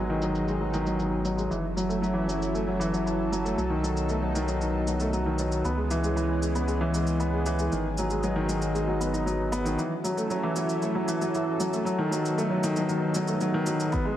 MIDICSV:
0, 0, Header, 1, 5, 480
1, 0, Start_track
1, 0, Tempo, 517241
1, 1407, Time_signature, 4, 2, 24, 8
1, 13148, End_track
2, 0, Start_track
2, 0, Title_t, "Analog synth pad"
2, 0, Program_c, 0, 89
2, 0, Note_on_c, 0, 54, 72
2, 0, Note_on_c, 0, 59, 60
2, 0, Note_on_c, 0, 63, 65
2, 0, Note_on_c, 0, 68, 77
2, 1366, Note_off_c, 0, 68, 0
2, 1368, Note_off_c, 0, 59, 0
2, 1384, Note_off_c, 0, 63, 0
2, 1402, Note_on_c, 0, 64, 65
2, 1402, Note_on_c, 0, 69, 80
2, 1406, Note_on_c, 0, 61, 65
2, 3305, Note_off_c, 0, 64, 0
2, 3307, Note_off_c, 0, 61, 0
2, 3321, Note_on_c, 0, 63, 68
2, 3326, Note_on_c, 0, 59, 65
2, 5206, Note_off_c, 0, 54, 0
2, 5208, Note_off_c, 0, 69, 0
2, 5225, Note_off_c, 0, 63, 0
2, 5245, Note_on_c, 0, 68, 82
2, 5246, Note_on_c, 0, 52, 74
2, 5246, Note_on_c, 0, 61, 67
2, 7147, Note_off_c, 0, 52, 0
2, 7147, Note_off_c, 0, 61, 0
2, 7170, Note_on_c, 0, 54, 71
2, 7171, Note_on_c, 0, 63, 69
2, 9049, Note_off_c, 0, 59, 0
2, 9049, Note_off_c, 0, 68, 0
2, 9069, Note_off_c, 0, 54, 0
2, 9070, Note_off_c, 0, 63, 0
2, 9097, Note_on_c, 0, 54, 71
2, 9097, Note_on_c, 0, 61, 67
2, 9097, Note_on_c, 0, 69, 80
2, 9099, Note_on_c, 0, 64, 68
2, 10993, Note_off_c, 0, 61, 0
2, 10994, Note_off_c, 0, 64, 0
2, 11009, Note_on_c, 0, 59, 70
2, 11009, Note_on_c, 0, 63, 66
2, 12895, Note_off_c, 0, 54, 0
2, 12895, Note_off_c, 0, 69, 0
2, 12909, Note_off_c, 0, 63, 0
2, 12929, Note_on_c, 0, 68, 90
2, 12930, Note_on_c, 0, 61, 69
2, 12931, Note_on_c, 0, 52, 83
2, 13148, Note_off_c, 0, 52, 0
2, 13148, Note_off_c, 0, 59, 0
2, 13148, Note_off_c, 0, 61, 0
2, 13148, Note_off_c, 0, 68, 0
2, 13148, End_track
3, 0, Start_track
3, 0, Title_t, "Upright piano"
3, 0, Program_c, 1, 0
3, 0, Control_c, 1, 64, 127
3, 0, Note_on_c, 1, 54, 66
3, 0, Note_on_c, 1, 56, 58
3, 91, Note_on_c, 1, 51, 82
3, 203, Note_off_c, 1, 51, 0
3, 212, Note_off_c, 1, 54, 0
3, 212, Note_on_c, 1, 54, 60
3, 324, Note_off_c, 1, 54, 0
3, 446, Note_off_c, 1, 56, 0
3, 446, Note_on_c, 1, 56, 63
3, 561, Note_off_c, 1, 56, 0
3, 561, Note_on_c, 1, 54, 55
3, 633, Note_off_c, 1, 54, 0
3, 682, Note_on_c, 1, 51, 81
3, 799, Note_off_c, 1, 51, 0
3, 802, Note_on_c, 1, 54, 57
3, 919, Note_off_c, 1, 54, 0
3, 925, Note_on_c, 1, 51, 60
3, 1040, Note_off_c, 1, 51, 0
3, 1158, Note_on_c, 1, 54, 61
3, 1274, Note_on_c, 1, 56, 59
3, 1276, Note_off_c, 1, 54, 0
3, 1395, Note_off_c, 1, 56, 0
3, 1397, Note_on_c, 1, 52, 64
3, 1418, Control_c, 1, 64, 0
3, 1516, Note_off_c, 1, 52, 0
3, 1587, Control_c, 1, 64, 127
3, 1638, Note_on_c, 1, 54, 58
3, 1750, Note_on_c, 1, 57, 59
3, 1756, Note_off_c, 1, 54, 0
3, 1873, Note_off_c, 1, 57, 0
3, 1875, Note_on_c, 1, 54, 68
3, 1983, Note_on_c, 1, 52, 73
3, 1995, Note_off_c, 1, 54, 0
3, 2109, Note_off_c, 1, 52, 0
3, 2114, Note_on_c, 1, 54, 61
3, 2235, Note_off_c, 1, 54, 0
3, 2358, Note_on_c, 1, 57, 64
3, 2476, Note_off_c, 1, 57, 0
3, 2481, Note_on_c, 1, 54, 59
3, 2553, Note_off_c, 1, 54, 0
3, 2596, Note_on_c, 1, 52, 79
3, 2715, Note_off_c, 1, 52, 0
3, 2718, Note_on_c, 1, 54, 56
3, 2836, Note_off_c, 1, 54, 0
3, 2840, Note_on_c, 1, 52, 66
3, 2957, Note_off_c, 1, 52, 0
3, 3081, Note_on_c, 1, 54, 61
3, 3198, Note_off_c, 1, 54, 0
3, 3198, Note_on_c, 1, 57, 62
3, 3316, Note_off_c, 1, 57, 0
3, 3319, Note_on_c, 1, 54, 65
3, 3338, Control_c, 1, 64, 0
3, 3434, Note_on_c, 1, 51, 78
3, 3437, Note_off_c, 1, 54, 0
3, 3487, Control_c, 1, 64, 127
3, 3554, Note_off_c, 1, 51, 0
3, 3559, Note_on_c, 1, 54, 63
3, 3677, Note_off_c, 1, 54, 0
3, 3799, Note_on_c, 1, 57, 68
3, 3917, Note_off_c, 1, 57, 0
3, 3917, Note_on_c, 1, 54, 61
3, 3991, Note_off_c, 1, 54, 0
3, 4039, Note_on_c, 1, 51, 83
3, 4157, Note_off_c, 1, 51, 0
3, 4158, Note_on_c, 1, 54, 61
3, 4277, Note_off_c, 1, 54, 0
3, 4281, Note_on_c, 1, 51, 61
3, 4398, Note_off_c, 1, 51, 0
3, 4525, Note_on_c, 1, 54, 62
3, 4640, Note_off_c, 1, 54, 0
3, 4648, Note_on_c, 1, 57, 65
3, 4761, Note_off_c, 1, 57, 0
3, 4761, Note_on_c, 1, 54, 63
3, 4878, Note_off_c, 1, 54, 0
3, 4882, Note_on_c, 1, 51, 74
3, 4999, Note_off_c, 1, 51, 0
3, 5006, Note_on_c, 1, 54, 64
3, 5121, Note_off_c, 1, 54, 0
3, 5242, Note_on_c, 1, 59, 74
3, 5257, Control_c, 1, 64, 0
3, 5354, Note_on_c, 1, 56, 56
3, 5359, Note_off_c, 1, 59, 0
3, 5404, Control_c, 1, 64, 127
3, 5429, Note_off_c, 1, 56, 0
3, 5482, Note_on_c, 1, 52, 80
3, 5598, Note_off_c, 1, 52, 0
3, 5603, Note_on_c, 1, 56, 61
3, 5718, Note_on_c, 1, 52, 72
3, 5719, Note_off_c, 1, 56, 0
3, 5836, Note_off_c, 1, 52, 0
3, 5957, Note_on_c, 1, 56, 58
3, 6076, Note_off_c, 1, 56, 0
3, 6080, Note_on_c, 1, 59, 66
3, 6195, Note_on_c, 1, 56, 68
3, 6197, Note_off_c, 1, 59, 0
3, 6315, Note_off_c, 1, 56, 0
3, 6318, Note_on_c, 1, 52, 89
3, 6437, Note_off_c, 1, 52, 0
3, 6444, Note_on_c, 1, 56, 64
3, 6560, Note_off_c, 1, 56, 0
3, 6680, Note_on_c, 1, 59, 70
3, 6797, Note_off_c, 1, 59, 0
3, 6804, Note_on_c, 1, 56, 63
3, 6874, Note_off_c, 1, 56, 0
3, 6925, Note_on_c, 1, 52, 85
3, 7040, Note_off_c, 1, 52, 0
3, 7048, Note_on_c, 1, 56, 63
3, 7162, Note_off_c, 1, 56, 0
3, 7167, Note_on_c, 1, 51, 72
3, 7180, Control_c, 1, 64, 0
3, 7281, Note_off_c, 1, 51, 0
3, 7325, Control_c, 1, 64, 127
3, 7410, Note_on_c, 1, 54, 66
3, 7522, Note_off_c, 1, 54, 0
3, 7522, Note_on_c, 1, 56, 62
3, 7638, Note_off_c, 1, 56, 0
3, 7642, Note_on_c, 1, 54, 70
3, 7757, Note_on_c, 1, 51, 85
3, 7758, Note_off_c, 1, 54, 0
3, 7873, Note_on_c, 1, 54, 60
3, 7876, Note_off_c, 1, 51, 0
3, 7994, Note_off_c, 1, 54, 0
3, 8114, Note_on_c, 1, 56, 66
3, 8235, Note_off_c, 1, 56, 0
3, 8235, Note_on_c, 1, 54, 66
3, 8310, Note_off_c, 1, 54, 0
3, 8354, Note_on_c, 1, 59, 64
3, 8475, Note_off_c, 1, 59, 0
3, 8476, Note_on_c, 1, 63, 64
3, 8594, Note_on_c, 1, 54, 71
3, 8595, Note_off_c, 1, 63, 0
3, 8714, Note_off_c, 1, 54, 0
3, 8836, Note_on_c, 1, 59, 87
3, 8955, Note_off_c, 1, 59, 0
3, 8955, Note_on_c, 1, 51, 82
3, 9075, Note_off_c, 1, 51, 0
3, 9075, Note_on_c, 1, 52, 72
3, 9100, Control_c, 1, 64, 0
3, 9195, Note_off_c, 1, 52, 0
3, 9271, Control_c, 1, 64, 127
3, 9316, Note_on_c, 1, 54, 63
3, 9436, Note_off_c, 1, 54, 0
3, 9438, Note_on_c, 1, 57, 66
3, 9557, Note_off_c, 1, 57, 0
3, 9561, Note_on_c, 1, 54, 73
3, 9678, Note_off_c, 1, 54, 0
3, 9682, Note_on_c, 1, 52, 84
3, 9798, Note_off_c, 1, 52, 0
3, 9803, Note_on_c, 1, 54, 64
3, 9919, Note_off_c, 1, 54, 0
3, 10045, Note_on_c, 1, 57, 66
3, 10160, Note_off_c, 1, 57, 0
3, 10162, Note_on_c, 1, 54, 66
3, 10233, Note_off_c, 1, 54, 0
3, 10281, Note_on_c, 1, 52, 86
3, 10398, Note_off_c, 1, 52, 0
3, 10408, Note_on_c, 1, 54, 64
3, 10522, Note_off_c, 1, 54, 0
3, 10532, Note_on_c, 1, 52, 69
3, 10644, Note_off_c, 1, 52, 0
3, 10762, Note_on_c, 1, 54, 67
3, 10878, Note_off_c, 1, 54, 0
3, 10886, Note_on_c, 1, 57, 67
3, 10997, Note_on_c, 1, 54, 70
3, 11000, Note_off_c, 1, 57, 0
3, 11017, Control_c, 1, 64, 0
3, 11116, Note_off_c, 1, 54, 0
3, 11122, Note_on_c, 1, 51, 86
3, 11182, Control_c, 1, 64, 127
3, 11238, Note_off_c, 1, 51, 0
3, 11241, Note_on_c, 1, 54, 69
3, 11358, Note_off_c, 1, 54, 0
3, 11486, Note_on_c, 1, 57, 80
3, 11600, Note_off_c, 1, 57, 0
3, 11601, Note_on_c, 1, 54, 67
3, 11672, Note_off_c, 1, 54, 0
3, 11726, Note_on_c, 1, 51, 96
3, 11840, Note_off_c, 1, 51, 0
3, 11854, Note_on_c, 1, 54, 69
3, 11964, Note_off_c, 1, 54, 0
3, 11964, Note_on_c, 1, 51, 73
3, 12080, Note_off_c, 1, 51, 0
3, 12210, Note_on_c, 1, 54, 70
3, 12322, Note_off_c, 1, 54, 0
3, 12326, Note_on_c, 1, 57, 67
3, 12440, Note_off_c, 1, 57, 0
3, 12446, Note_on_c, 1, 54, 76
3, 12560, Note_off_c, 1, 54, 0
3, 12566, Note_on_c, 1, 51, 93
3, 12680, Note_off_c, 1, 51, 0
3, 12685, Note_on_c, 1, 54, 72
3, 12800, Note_off_c, 1, 54, 0
3, 12919, Note_on_c, 1, 59, 81
3, 12940, Control_c, 1, 64, 0
3, 13037, Note_off_c, 1, 59, 0
3, 13038, Note_on_c, 1, 56, 72
3, 13109, Control_c, 1, 64, 127
3, 13111, Note_off_c, 1, 56, 0
3, 13148, End_track
4, 0, Start_track
4, 0, Title_t, "Sub bass"
4, 0, Program_c, 2, 38
4, 0, Note_on_c, 2, 32, 79
4, 1381, Note_off_c, 2, 32, 0
4, 1405, Note_on_c, 2, 30, 78
4, 3302, Note_off_c, 2, 30, 0
4, 3322, Note_on_c, 2, 35, 84
4, 5220, Note_off_c, 2, 35, 0
4, 5235, Note_on_c, 2, 37, 82
4, 7137, Note_off_c, 2, 37, 0
4, 7168, Note_on_c, 2, 32, 89
4, 9063, Note_off_c, 2, 32, 0
4, 13148, End_track
5, 0, Start_track
5, 0, Title_t, "Drums"
5, 204, Note_on_c, 9, 82, 63
5, 297, Note_off_c, 9, 82, 0
5, 325, Note_on_c, 9, 82, 34
5, 417, Note_off_c, 9, 82, 0
5, 445, Note_on_c, 9, 82, 23
5, 538, Note_off_c, 9, 82, 0
5, 684, Note_on_c, 9, 82, 60
5, 776, Note_off_c, 9, 82, 0
5, 803, Note_on_c, 9, 82, 34
5, 896, Note_off_c, 9, 82, 0
5, 922, Note_on_c, 9, 82, 26
5, 1015, Note_off_c, 9, 82, 0
5, 1160, Note_on_c, 9, 82, 60
5, 1253, Note_off_c, 9, 82, 0
5, 1286, Note_on_c, 9, 82, 34
5, 1378, Note_off_c, 9, 82, 0
5, 1406, Note_on_c, 9, 82, 24
5, 1499, Note_off_c, 9, 82, 0
5, 1649, Note_on_c, 9, 82, 62
5, 1741, Note_off_c, 9, 82, 0
5, 1767, Note_on_c, 9, 82, 35
5, 1860, Note_off_c, 9, 82, 0
5, 1889, Note_on_c, 9, 82, 26
5, 1982, Note_off_c, 9, 82, 0
5, 2127, Note_on_c, 9, 82, 63
5, 2220, Note_off_c, 9, 82, 0
5, 2248, Note_on_c, 9, 82, 35
5, 2341, Note_off_c, 9, 82, 0
5, 2368, Note_on_c, 9, 82, 24
5, 2461, Note_off_c, 9, 82, 0
5, 2609, Note_on_c, 9, 82, 58
5, 2702, Note_off_c, 9, 82, 0
5, 2729, Note_on_c, 9, 82, 33
5, 2822, Note_off_c, 9, 82, 0
5, 2850, Note_on_c, 9, 82, 26
5, 2943, Note_off_c, 9, 82, 0
5, 3090, Note_on_c, 9, 82, 58
5, 3183, Note_off_c, 9, 82, 0
5, 3211, Note_on_c, 9, 82, 34
5, 3304, Note_off_c, 9, 82, 0
5, 3327, Note_on_c, 9, 82, 22
5, 3419, Note_off_c, 9, 82, 0
5, 3566, Note_on_c, 9, 82, 56
5, 3659, Note_off_c, 9, 82, 0
5, 3683, Note_on_c, 9, 82, 32
5, 3776, Note_off_c, 9, 82, 0
5, 3797, Note_on_c, 9, 82, 24
5, 3890, Note_off_c, 9, 82, 0
5, 4043, Note_on_c, 9, 82, 61
5, 4136, Note_off_c, 9, 82, 0
5, 4159, Note_on_c, 9, 82, 34
5, 4252, Note_off_c, 9, 82, 0
5, 4282, Note_on_c, 9, 82, 23
5, 4375, Note_off_c, 9, 82, 0
5, 4523, Note_on_c, 9, 82, 57
5, 4616, Note_off_c, 9, 82, 0
5, 4639, Note_on_c, 9, 82, 31
5, 4732, Note_off_c, 9, 82, 0
5, 4765, Note_on_c, 9, 82, 26
5, 4857, Note_off_c, 9, 82, 0
5, 4999, Note_on_c, 9, 82, 57
5, 5092, Note_off_c, 9, 82, 0
5, 5121, Note_on_c, 9, 82, 33
5, 5214, Note_off_c, 9, 82, 0
5, 5243, Note_on_c, 9, 82, 22
5, 5336, Note_off_c, 9, 82, 0
5, 5482, Note_on_c, 9, 82, 59
5, 5575, Note_off_c, 9, 82, 0
5, 5603, Note_on_c, 9, 82, 31
5, 5696, Note_off_c, 9, 82, 0
5, 5728, Note_on_c, 9, 82, 25
5, 5821, Note_off_c, 9, 82, 0
5, 5964, Note_on_c, 9, 82, 61
5, 6057, Note_off_c, 9, 82, 0
5, 6083, Note_on_c, 9, 82, 33
5, 6176, Note_off_c, 9, 82, 0
5, 6200, Note_on_c, 9, 82, 22
5, 6293, Note_off_c, 9, 82, 0
5, 6444, Note_on_c, 9, 82, 56
5, 6537, Note_off_c, 9, 82, 0
5, 6560, Note_on_c, 9, 82, 33
5, 6653, Note_off_c, 9, 82, 0
5, 6684, Note_on_c, 9, 82, 27
5, 6777, Note_off_c, 9, 82, 0
5, 6923, Note_on_c, 9, 82, 56
5, 7016, Note_off_c, 9, 82, 0
5, 7044, Note_on_c, 9, 82, 36
5, 7137, Note_off_c, 9, 82, 0
5, 7167, Note_on_c, 9, 82, 26
5, 7260, Note_off_c, 9, 82, 0
5, 7402, Note_on_c, 9, 82, 60
5, 7495, Note_off_c, 9, 82, 0
5, 7520, Note_on_c, 9, 82, 33
5, 7612, Note_off_c, 9, 82, 0
5, 7640, Note_on_c, 9, 82, 25
5, 7733, Note_off_c, 9, 82, 0
5, 7880, Note_on_c, 9, 82, 60
5, 7973, Note_off_c, 9, 82, 0
5, 7998, Note_on_c, 9, 82, 36
5, 8090, Note_off_c, 9, 82, 0
5, 8124, Note_on_c, 9, 82, 23
5, 8217, Note_off_c, 9, 82, 0
5, 8364, Note_on_c, 9, 82, 58
5, 8456, Note_off_c, 9, 82, 0
5, 8484, Note_on_c, 9, 82, 34
5, 8577, Note_off_c, 9, 82, 0
5, 8608, Note_on_c, 9, 82, 28
5, 8701, Note_off_c, 9, 82, 0
5, 8840, Note_on_c, 9, 82, 60
5, 8933, Note_off_c, 9, 82, 0
5, 8964, Note_on_c, 9, 82, 36
5, 9056, Note_off_c, 9, 82, 0
5, 9083, Note_on_c, 9, 82, 25
5, 9175, Note_off_c, 9, 82, 0
5, 9324, Note_on_c, 9, 82, 66
5, 9417, Note_off_c, 9, 82, 0
5, 9446, Note_on_c, 9, 82, 35
5, 9539, Note_off_c, 9, 82, 0
5, 9563, Note_on_c, 9, 82, 27
5, 9656, Note_off_c, 9, 82, 0
5, 9800, Note_on_c, 9, 82, 68
5, 9893, Note_off_c, 9, 82, 0
5, 9924, Note_on_c, 9, 82, 37
5, 10017, Note_off_c, 9, 82, 0
5, 10043, Note_on_c, 9, 82, 26
5, 10135, Note_off_c, 9, 82, 0
5, 10285, Note_on_c, 9, 82, 67
5, 10378, Note_off_c, 9, 82, 0
5, 10409, Note_on_c, 9, 82, 36
5, 10502, Note_off_c, 9, 82, 0
5, 10529, Note_on_c, 9, 82, 28
5, 10622, Note_off_c, 9, 82, 0
5, 10768, Note_on_c, 9, 82, 67
5, 10861, Note_off_c, 9, 82, 0
5, 10889, Note_on_c, 9, 82, 38
5, 10981, Note_off_c, 9, 82, 0
5, 11013, Note_on_c, 9, 82, 27
5, 11106, Note_off_c, 9, 82, 0
5, 11252, Note_on_c, 9, 82, 70
5, 11345, Note_off_c, 9, 82, 0
5, 11372, Note_on_c, 9, 82, 39
5, 11465, Note_off_c, 9, 82, 0
5, 11493, Note_on_c, 9, 82, 28
5, 11586, Note_off_c, 9, 82, 0
5, 11726, Note_on_c, 9, 82, 71
5, 11819, Note_off_c, 9, 82, 0
5, 11844, Note_on_c, 9, 82, 38
5, 11937, Note_off_c, 9, 82, 0
5, 11964, Note_on_c, 9, 82, 26
5, 12057, Note_off_c, 9, 82, 0
5, 12200, Note_on_c, 9, 82, 68
5, 12293, Note_off_c, 9, 82, 0
5, 12320, Note_on_c, 9, 82, 37
5, 12413, Note_off_c, 9, 82, 0
5, 12441, Note_on_c, 9, 82, 29
5, 12534, Note_off_c, 9, 82, 0
5, 12680, Note_on_c, 9, 82, 71
5, 12773, Note_off_c, 9, 82, 0
5, 12807, Note_on_c, 9, 82, 42
5, 12899, Note_off_c, 9, 82, 0
5, 12923, Note_on_c, 9, 82, 29
5, 12924, Note_on_c, 9, 36, 108
5, 13016, Note_off_c, 9, 82, 0
5, 13017, Note_off_c, 9, 36, 0
5, 13148, End_track
0, 0, End_of_file